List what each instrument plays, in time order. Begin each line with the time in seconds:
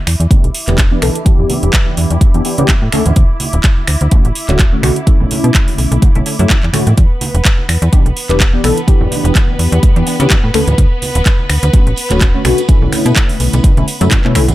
Already playing: violin section E4 D6
0.07 fm bass E2, finger snap, open hi-hat, tambourine
0.20 fm bass E2, closed hi-hat
0.30 fm bass B1, analog polysynth E3 B3 D4 G4, kick, closed hi-hat, tambourine, high conga
0.44 fm bass B1, closed hi-hat
0.54 open hi-hat
0.67 fm bass E1, analog polysynth E3 B3 D4 G4, clap, closed hi-hat, tambourine, high conga
0.78 kick, clap, closed hi-hat
0.91 analog polysynth E3 B3 D4 G4
1.02 fm bass B1, analog polysynth E3 B3 D4 A4, finger snap, open hi-hat, tambourine, high conga
1.15 closed hi-hat, tambourine
1.25 fm bass E2, analog polysynth E3 B3 D4 G4, kick, closed hi-hat
1.39 fm bass E2, low conga
1.50 open hi-hat, tambourine, high conga
1.63 fm bass E1, closed hi-hat, tambourine
1.73 kick, clap, closed hi-hat
1.87 high conga
1.97 fm bass E2, open hi-hat
2.11 fm bass E2, closed hi-hat
2.21 kick, closed hi-hat, tambourine, high conga
2.34 fm bass E2, analog polysynth E3 B3 D4 G4, closed hi-hat
2.45 analog polysynth E3 B3 D4 G4, open hi-hat
2.58 fm bass C#3, analog polysynth E3 B3 D4 G4, closed hi-hat, tambourine, high conga
2.68 kick, clap, closed hi-hat, tambourine, low conga
2.82 fm bass A2
2.92 fm bass D2, analog polysynth D3 A3 C#4 A4, finger snap, open hi-hat, tambourine, high conga
3.06 fm bass D2, closed hi-hat, tambourine, low conga
3.16 fm bass D2, kick, closed hi-hat, tambourine
3.40 open hi-hat, tambourine, high conga
3.53 fm bass D1, closed hi-hat, tambourine
3.64 kick, clap, closed hi-hat
3.78 high conga
3.87 fm bass D2, finger snap, open hi-hat, tambourine
4.01 fm bass D2, closed hi-hat, tambourine
4.11 analog polysynth D3 A3 C#4 F#4, kick, closed hi-hat, tambourine, high conga
4.25 fm bass A1, closed hi-hat
4.35 open hi-hat, tambourine
4.48 fm bass D1, analog polysynth D3 A3 C#4 F#4, clap, closed hi-hat, tambourine, high conga
4.59 kick, clap, closed hi-hat
4.72 analog polysynth D3 A3 C#4 F#4
4.82 fm bass B1, analog polysynth D3 A3 C#4 F#4, finger snap, open hi-hat, tambourine, high conga
4.96 closed hi-hat, tambourine
5.06 fm bass B1, analog polysynth D3 A3 C#4 E4, kick, closed hi-hat
5.20 fm bass B1, low conga
5.31 open hi-hat, tambourine, high conga
5.44 fm bass B2, closed hi-hat, tambourine
5.54 kick, clap, closed hi-hat
5.68 open hi-hat, high conga
5.78 fm bass B1, open hi-hat, tambourine
5.91 fm bass B1, closed hi-hat, tambourine
6.02 kick, closed hi-hat, tambourine, high conga
6.15 fm bass B1, analog polysynth D3 A3 C#4 E4, closed hi-hat
6.26 analog polysynth D3 A3 C#4 E4, open hi-hat, tambourine
6.39 fm bass F#2, analog polysynth D3 A3 C#4 E4, closed hi-hat, tambourine, high conga
6.50 kick, clap, closed hi-hat, tambourine, low conga
6.63 fm bass E2, clap
6.73 fm bass A2, analog polysynth D3 A3 C#4 F#4, finger snap, open hi-hat, tambourine, high conga
6.86 fm bass A2, closed hi-hat, tambourine, low conga
6.97 fm bass E2, violin section B3 B4, kick, closed hi-hat, tambourine
7.21 open hi-hat, tambourine, high conga
7.34 fm bass E1, closed hi-hat, tambourine
7.45 kick, clap, closed hi-hat
7.58 high conga
7.69 fm bass E2, finger snap, open hi-hat, tambourine
7.82 fm bass E2, closed hi-hat, tambourine
7.92 analog polysynth E3 B3 D4 G4, kick, closed hi-hat, tambourine, high conga
8.06 fm bass B1, closed hi-hat
8.16 open hi-hat, tambourine
8.29 fm bass E1, analog polysynth E3 B3 D4 G4, clap, closed hi-hat, tambourine, high conga
8.40 kick, clap, closed hi-hat
8.53 analog polysynth E3 B3 D4 G4
8.64 fm bass B1, analog polysynth E3 B3 D4 A4, finger snap, open hi-hat, tambourine, high conga
8.77 closed hi-hat, tambourine
8.87 fm bass E2, analog polysynth E3 B3 D4 G4, kick, closed hi-hat, tambourine
9.01 fm bass E2, low conga
9.11 open hi-hat, tambourine, high conga
9.24 fm bass E1, closed hi-hat, tambourine
9.35 kick, clap, closed hi-hat
9.48 high conga
9.59 fm bass E2, open hi-hat, tambourine
9.72 fm bass E2, closed hi-hat, tambourine
9.83 kick, closed hi-hat, tambourine, high conga
9.96 fm bass E2, analog polysynth E3 B3 D4 G4, closed hi-hat
10.07 analog polysynth E3 B3 D4 G4, open hi-hat, tambourine
10.20 fm bass C#3, analog polysynth E3 B3 D4 G4, closed hi-hat, tambourine, high conga
10.30 kick, clap, closed hi-hat, tambourine, low conga
10.44 fm bass A2
10.54 fm bass D2, analog polysynth D3 A3 C#4 A4, finger snap, open hi-hat, tambourine, high conga
10.67 fm bass D2, closed hi-hat, tambourine, low conga
10.78 fm bass D2, kick, closed hi-hat
11.02 open hi-hat, tambourine, high conga
11.15 fm bass D1, closed hi-hat, tambourine
11.26 kick, clap, closed hi-hat
11.39 high conga
11.50 fm bass D2, finger snap, open hi-hat, tambourine
11.63 fm bass D2, closed hi-hat, tambourine
11.73 analog polysynth D3 A3 C#4 F#4, kick, closed hi-hat, tambourine, high conga
11.87 fm bass A1, closed hi-hat
11.96 open hi-hat, tambourine
12.10 fm bass D1, analog polysynth D3 A3 C#4 F#4, clap, closed hi-hat, tambourine, high conga
12.21 kick, clap, closed hi-hat
12.34 analog polysynth D3 A3 C#4 F#4
12.44 fm bass B1, analog polysynth D3 A3 C#4 F#4, finger snap, open hi-hat, tambourine, high conga
12.57 closed hi-hat, tambourine
12.68 fm bass B1, analog polysynth D3 A3 C#4 E4, kick, closed hi-hat
12.82 fm bass B1, low conga
12.92 finger snap, open hi-hat, tambourine, high conga
13.05 fm bass B2, closed hi-hat, tambourine
13.16 kick, clap, closed hi-hat
13.29 open hi-hat, high conga
13.40 fm bass B1, open hi-hat, tambourine
13.53 fm bass B1, closed hi-hat, tambourine
13.64 kick, closed hi-hat, tambourine, high conga
13.77 fm bass B1, analog polysynth D3 A3 C#4 E4, closed hi-hat
13.88 open hi-hat, tambourine
14.01 fm bass F#2, analog polysynth D3 A3 C#4 E4, closed hi-hat, tambourine, high conga
14.11 kick, clap, closed hi-hat, tambourine, low conga
14.24 fm bass B2, analog polysynth D3 A3 C#4 E4, clap
14.35 fm bass B1, analog polysynth D3 A3 C#4 E4, finger snap, open hi-hat, tambourine, high conga
14.48 closed hi-hat, tambourine, low conga